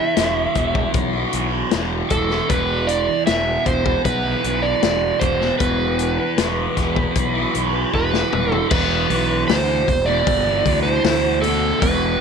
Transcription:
Already playing: distorted electric guitar E2, electric slide guitar E5
0.15 fingered electric bass E1, distorted electric guitar E2 B2 E3, snare, closed hi-hat
0.55 fingered electric bass E1, distorted electric guitar E2 B2 E3, kick, closed hi-hat
0.75 muted distorted electric guitar stroke, kick
0.94 fingered electric bass B1, kick, closed hi-hat
1.13 distorted electric guitar B2 E3
1.32 fingered electric bass B1, distorted electric guitar E2 B2 E3, closed hi-hat
1.51 distorted electric guitar B2 E3
1.71 fingered electric bass E1, distorted electric guitar E2 B2 E3, snare, closed hi-hat
2.10 fingered electric bass E1, distorted electric guitar E2 B2 E3, electric slide guitar A4, kick, closed hi-hat
2.29 distorted electric guitar B2 E3, snare
2.49 fingered electric bass E1, distorted electric guitar E2 B2 E3, electric slide guitar B4, kick, closed hi-hat
2.87 electric slide guitar D5, closed hi-hat
3.07 muted distorted electric guitar stroke
3.26 fingered electric bass E1, distorted electric guitar E2 B2 E3, electric slide guitar E5, snare, closed hi-hat
3.65 fingered electric bass E1, distorted electric guitar E2 B2 E3, electric slide guitar C5, kick, closed hi-hat
3.85 muted distorted electric guitar stroke, kick
4.05 fingered electric bass B1, electric slide guitar B4, kick, closed hi-hat
4.23 distorted electric guitar B2 E3
4.43 fingered electric bass B1, distorted electric guitar E2 B2 E3, closed hi-hat
4.62 distorted electric guitar B2 E3, electric slide guitar D5
4.81 fingered electric bass E1, distorted electric guitar E2 B2 E3, snare, closed hi-hat
5.20 fingered electric bass E1, distorted electric guitar E2 B2 E3, electric slide guitar C5, kick, closed hi-hat
5.40 distorted electric guitar B2 E3, snare
5.59 fingered electric bass E1, distorted electric guitar E2 B2 E3, electric slide guitar B4, kick, closed hi-hat
5.99 closed hi-hat
6.18 muted distorted electric guitar stroke
6.36 fingered electric bass E1, distorted electric guitar E2 B2 E3, snare, closed hi-hat
6.75 fingered electric bass E1, distorted electric guitar E2 B2 E3, kick, snare, closed hi-hat
6.96 muted distorted electric guitar stroke, kick
7.15 fingered electric bass B1, kick, closed hi-hat
7.34 distorted electric guitar B2 E3
7.54 fingered electric bass B1, distorted electric guitar E2 B2 E3, closed hi-hat
7.73 distorted electric guitar B2 E3
7.92 fingered electric bass E1, distorted electric guitar E2 B2 E3, electric slide guitar B4, kick
8.13 snare
8.31 fingered electric bass E1, distorted electric guitar E2 B2 E3, mid tom
8.51 distorted electric guitar B2 E3, electric slide guitar A4, floor tom
8.71 fingered electric bass E1, distorted electric guitar E2 B2 E3, electric slide guitar B4, kick, crash
9.09 fingered electric bass B1, distorted electric guitar E2 B2 E3, open hi-hat
9.48 fingered electric bass D2, distorted electric guitar E2 B2 E3, electric slide guitar C5, snare, open hi-hat
9.68 distorted electric guitar B2 E3
9.88 fingered electric bass E1, muted distorted electric guitar stroke, kick, open hi-hat
10.06 distorted electric guitar B2 E3, electric slide guitar D5
10.27 fingered electric bass G1, kick, open hi-hat
10.45 distorted electric guitar B2 E3
10.65 fingered electric bass D2, distorted electric guitar E2 B2 E3, kick, open hi-hat
10.83 distorted electric guitar E3, electric slide guitar C5
10.87 distorted electric guitar B2
11.03 fingered electric bass D2, distorted electric guitar E2 B2 E3, snare, open hi-hat
11.23 distorted electric guitar B2 E3
11.42 distorted electric guitar E2 B2 E3, electric slide guitar A4, open hi-hat
11.80 fingered electric bass E1, distorted electric guitar E2 B2 E3, electric slide guitar B4, kick, open hi-hat

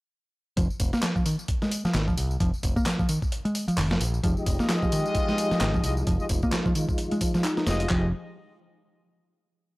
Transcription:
0.57 picked electric bass F1 F3, kick, closed hi-hat, tambourine
0.70 tambourine
0.80 picked electric bass F1, kick, closed hi-hat, open hi-hat, tambourine
0.93 picked electric bass A#3, snare, tambourine
1.03 picked electric bass F3, snare, clap, closed hi-hat, tambourine
1.16 picked electric bass F3, kick, tambourine
1.26 picked electric bass D#3, closed hi-hat, open hi-hat, tambourine
1.39 tambourine
1.48 kick, closed hi-hat, tambourine
1.62 picked electric bass G#3, snare, tambourine
1.71 closed hi-hat, open hi-hat, tambourine
1.85 picked electric bass F3, muted picked electric bass stroke, snare, tambourine
1.94 picked electric bass G#1 D#3, snare, clap, closed hi-hat, tambourine
2.08 picked electric bass F3, kick, tambourine
2.17 picked electric bass C2, closed hi-hat, open hi-hat, tambourine
2.31 tambourine
2.40 picked electric bass F1 F3, kick, closed hi-hat, tambourine
2.54 tambourine
2.63 picked electric bass F1, kick, closed hi-hat, open hi-hat, tambourine
2.76 picked electric bass A#3, kick, tambourine
2.86 picked electric bass F3, snare, clap, closed hi-hat, tambourine
2.99 picked electric bass F3, kick, tambourine
3.09 picked electric bass D#3, closed hi-hat, open hi-hat, tambourine
3.22 kick, tambourine
3.32 closed hi-hat, tambourine
3.45 picked electric bass G#3, closed hi-hat, tambourine
3.55 closed hi-hat, open hi-hat, tambourine
3.68 picked electric bass F3, muted picked electric bass stroke, closed hi-hat, tambourine
3.77 picked electric bass F1 D#3, clap, open hi-hat, tambourine
3.91 picked electric bass F3, snare, tambourine
4.00 picked electric bass A#1, closed hi-hat, open hi-hat, tambourine
4.14 tambourine
4.23 picked electric bass F1 F3, tonewheel organ F3 G#3 D#4 G4, kick, closed hi-hat, tambourine
4.37 brass ensemble G#3 F4 G4 D#5, tambourine
4.46 picked electric bass F1, kick, closed hi-hat, open hi-hat, tambourine
4.59 picked electric bass A#3, snare, tambourine
4.69 picked electric bass F3, snare, clap, closed hi-hat, tambourine
4.82 picked electric bass F3, kick, tambourine
4.92 picked electric bass D#3, closed hi-hat, open hi-hat, tambourine
5.06 tambourine
5.15 kick, closed hi-hat, tambourine
5.29 picked electric bass G#3, snare, tambourine
5.38 closed hi-hat, open hi-hat, tambourine
5.51 picked electric bass F3, muted picked electric bass stroke, snare, tambourine
5.61 picked electric bass G#1 D#3, snare, clap, closed hi-hat, tambourine
5.74 picked electric bass F3, kick, tambourine
5.84 picked electric bass C2, brass ensemble G#3 F4 G4 D#5, closed hi-hat, open hi-hat, tambourine
5.97 tambourine
6.07 picked electric bass F1 F3, tonewheel organ F4, kick, closed hi-hat, tambourine
6.20 brass ensemble G#3 F4 G4 D#5, tambourine
6.29 picked electric bass F1, kick, closed hi-hat, open hi-hat, tambourine
6.42 picked electric bass A#3, kick, tambourine
6.52 picked electric bass F3, snare, clap, closed hi-hat, tambourine
6.66 picked electric bass F3, kick, tambourine
6.75 picked electric bass D#3, closed hi-hat, open hi-hat, tambourine
6.89 kick, tambourine
6.98 closed hi-hat, tambourine
7.11 picked electric bass G#3, closed hi-hat, tambourine
7.21 picked electric bass F3, kick, closed hi-hat, open hi-hat, tambourine
7.34 picked electric bass F3, snare, tambourine
7.44 picked electric bass D#4, clap, closed hi-hat, tambourine
7.57 picked electric bass D#4, snare, tambourine
7.67 picked electric bass F1, brass ensemble G#3 F4 G4 D#5, snare, open hi-hat, tambourine
7.80 closed hi-hat, tambourine
7.89 picked electric bass F1 F3, tonewheel organ F3 D#4 G4 G#4, brass ensemble G#3 F4 G4 D#5, kick, clap

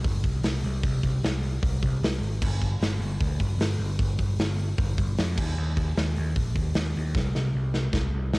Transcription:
0.04 picked electric bass G1, kick, open hi-hat
0.24 picked electric bass C2, kick, open hi-hat
0.43 picked electric bass C2, snare, open hi-hat
0.63 picked electric bass C2, open hi-hat
0.83 picked electric bass C2, kick, open hi-hat
1.03 picked electric bass C2, kick, open hi-hat
1.23 picked electric bass C2, snare, open hi-hat
1.43 open hi-hat
1.63 picked electric bass C2, kick, open hi-hat
1.83 picked electric bass C2, kick, open hi-hat
2.03 picked electric bass C2, snare, open hi-hat
2.21 picked electric bass G#1, open hi-hat
2.41 picked electric bass G1, kick, crash
2.61 kick, open hi-hat
2.81 picked electric bass G1, snare, open hi-hat
2.99 picked electric bass G1, open hi-hat
3.20 picked electric bass D2, kick, open hi-hat
3.40 picked electric bass G1, kick, open hi-hat
3.58 picked electric bass G1, snare, open hi-hat
3.79 picked electric bass G1, open hi-hat
3.99 picked electric bass G1, kick, open hi-hat
4.19 picked electric bass G1, kick, open hi-hat
4.39 picked electric bass G1, snare, open hi-hat
4.58 open hi-hat
4.78 picked electric bass G1, kick, open hi-hat
4.98 picked electric bass G1, kick, open hi-hat
5.18 picked electric bass F2, snare, open hi-hat
5.38 picked electric bass D#2, kick, crash
5.58 picked electric bass D#2
5.77 kick, open hi-hat
5.97 picked electric bass D#2, snare, open hi-hat
6.16 picked electric bass D#2, open hi-hat
6.36 picked electric bass A#1, kick, open hi-hat
6.55 picked electric bass D#2, kick, open hi-hat
6.74 picked electric bass D#2, snare, open hi-hat
6.95 picked electric bass D#2, open hi-hat
7.14 picked electric bass C2, kick, snare
7.35 picked electric bass C2, snare
7.54 picked electric bass C2
7.74 snare
7.93 picked electric bass C2, kick, snare
8.14 picked electric bass C2
8.33 picked electric bass C2, snare

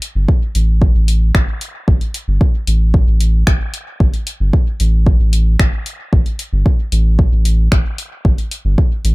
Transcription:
0.02 open hi-hat
0.15 analog synth bass G1
0.28 kick
0.55 analog synth bass A1, open hi-hat
0.82 kick
0.95 analog synth bass A1
1.08 open hi-hat
1.35 analog synth bass A1, finger snap, kick
1.61 open hi-hat
1.88 analog synth bass A1, kick
2.01 open hi-hat
2.14 open hi-hat
2.28 analog synth bass G1
2.41 kick
2.67 analog synth bass A1, open hi-hat
2.94 kick
3.07 analog synth bass A1
3.20 open hi-hat
3.47 analog synth bass A1, finger snap, kick
3.74 open hi-hat
4.00 analog synth bass A1, kick
4.14 open hi-hat
4.27 open hi-hat
4.40 analog synth bass G1
4.53 kick
4.80 analog synth bass A1, open hi-hat
5.07 kick
5.20 analog synth bass A1
5.33 open hi-hat
5.60 analog synth bass A1, finger snap, kick
5.86 open hi-hat
6.13 analog synth bass A1, kick
6.26 open hi-hat
6.39 open hi-hat
6.53 analog synth bass G1
6.66 kick
6.92 analog synth bass A1, open hi-hat
7.19 kick
7.32 analog synth bass A1
7.45 open hi-hat
7.72 analog synth bass A1, finger snap, kick
7.98 open hi-hat
8.25 analog synth bass A1, kick
8.38 open hi-hat
8.51 open hi-hat
8.65 analog synth bass G1
8.78 kick
9.05 analog synth bass A1, open hi-hat

